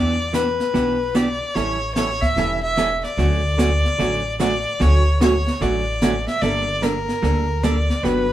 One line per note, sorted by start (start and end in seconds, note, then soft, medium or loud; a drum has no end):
0.00 0.58 E2 medium
0.00 0.15 E3 medium
0.00 0.16 B3 medium
0.00 0.16 D4 medium
0.00 0.16 G4 medium
0.00 0.36 D5 loud
0.33 0.45 E3 medium
0.33 0.46 B3 medium
0.33 0.46 D4 medium
0.33 0.46 G4 medium
0.33 1.17 B4 medium
0.33 snare medium
0.33 hi-hat pedal medium
0.60 snare soft
0.74 1.39 B1 medium
0.74 0.96 E3 medium
0.74 0.96 B3 medium
0.74 0.97 D4 medium
0.74 0.97 G4 medium
0.74 brush sweep soft
0.74 snare soft
1.15 1.27 E3 medium
1.15 1.27 B3 medium
1.15 1.27 D4 medium
1.15 1.27 G4 medium
1.15 1.57 D5 medium
1.15 snare medium
1.15 hi-hat pedal soft
1.55 2.21 A1 medium
1.55 1.77 E3 medium
1.55 1.78 G3 medium
1.55 1.78 C#4 medium
1.55 1.78 E4 medium
1.55 1.78 A4 medium
1.55 1.94 C#5 medium
1.55 brush sweep soft
1.55 snare soft
1.95 2.08 E3 medium
1.95 2.08 G3 medium
1.95 2.08 C#4 medium
1.95 2.09 E4 medium
1.95 2.09 A4 medium
1.95 2.23 C#5 medium
1.95 snare medium
1.95 hi-hat pedal medium
2.22 2.63 E5 medium
2.22 kick medium
2.22 snare soft
2.36 3.01 E1 medium
2.36 2.59 E3 medium
2.36 2.59 G3 medium
2.36 2.60 C#4 medium
2.36 2.60 E4 medium
2.36 2.60 A4 medium
2.36 brush sweep medium
2.36 snare soft
2.63 3.01 E5 medium
2.77 2.89 E3 medium
2.77 2.89 G3 medium
2.77 2.90 C#4 medium
2.77 2.90 E4 medium
2.77 2.90 A4 medium
2.77 snare medium
2.77 hi-hat pedal soft
3.04 4.37 D5 loud
3.04 snare soft
3.17 3.83 D2 medium
3.17 3.40 D3 medium
3.17 3.40 F#3 medium
3.17 3.40 A3 medium
3.17 3.41 C#4 medium
3.17 3.41 F#4 medium
3.17 brush sweep medium
3.17 snare soft
3.58 3.70 D3 medium
3.58 3.70 F#3 medium
3.58 3.70 A3 medium
3.58 3.70 C#4 medium
3.58 3.70 F#4 medium
3.58 snare medium
3.58 hi-hat pedal medium
3.85 snare soft
3.99 4.64 A1 medium
3.99 4.21 D3 medium
3.99 4.21 F#3 medium
3.99 4.21 A3 medium
3.99 4.21 C#4 medium
3.99 4.22 F#4 medium
3.99 brush sweep soft
3.99 snare soft
4.40 4.51 D3 medium
4.40 4.51 F#3 medium
4.40 4.52 A3 medium
4.40 4.52 C#4 medium
4.40 4.52 F#4 medium
4.40 4.83 D5 medium
4.40 snare medium
4.40 hi-hat pedal medium
4.80 5.45 D2 medium
4.80 5.02 D3 medium
4.80 5.02 F#3 medium
4.80 5.02 A3 medium
4.80 5.02 C#4 medium
4.80 5.03 F#4 medium
4.80 5.22 C#5 loud
4.80 brush sweep soft
4.80 snare soft
5.21 5.32 D3 medium
5.21 5.33 F#3 medium
5.21 5.33 A3 medium
5.21 5.33 C#4 medium
5.21 5.33 F#4 medium
5.21 5.63 C#5 medium
5.21 snare medium
5.21 hi-hat pedal medium
5.47 snare soft
5.61 6.26 A1 medium
5.61 5.83 D3 soft
5.61 5.83 F#3 medium
5.61 5.83 A3 medium
5.61 5.83 C#4 medium
5.61 5.84 F#4 medium
5.61 6.28 D5 medium
5.61 brush sweep medium
5.61 snare soft
6.02 6.14 D3 medium
6.02 6.14 F#3 medium
6.02 6.14 A3 medium
6.02 6.14 C#4 medium
6.02 6.14 F#4 medium
6.02 snare medium
6.02 hi-hat pedal medium
6.27 6.44 E5 medium
6.27 snare soft
6.42 7.07 G1 medium
6.42 6.64 D3 medium
6.42 6.64 G3 medium
6.42 6.65 A#3 medium
6.42 6.65 D4 medium
6.42 6.65 A4 medium
6.42 6.84 D5 loud
6.42 brush sweep soft
6.42 snare soft
6.82 6.94 D3 medium
6.82 6.94 G3 medium
6.82 6.94 A#3 medium
6.82 6.95 D4 medium
6.82 6.95 A4 medium
6.82 7.65 A#4 medium
6.82 snare medium
6.82 hi-hat pedal medium
7.09 snare soft
7.22 7.88 D2 medium
7.22 7.45 D3 medium
7.22 7.45 G3 medium
7.22 7.45 A#3 medium
7.22 7.45 D4 medium
7.22 7.46 A4 medium
7.22 brush sweep soft
7.22 snare soft
7.63 7.75 D3 medium
7.63 7.75 G3 medium
7.63 7.76 A#3 medium
7.63 7.76 D4 medium
7.63 7.76 A4 medium
7.63 8.05 D5 medium
7.63 snare medium
7.63 hi-hat pedal soft
7.90 snare soft
8.03 8.33 G1 medium
8.03 8.26 D3 medium
8.03 8.26 F#3 medium
8.03 8.26 B3 medium
8.03 8.26 D4 medium
8.03 8.26 G4 medium
8.03 8.33 B4 loud
8.03 brush sweep medium
8.03 snare soft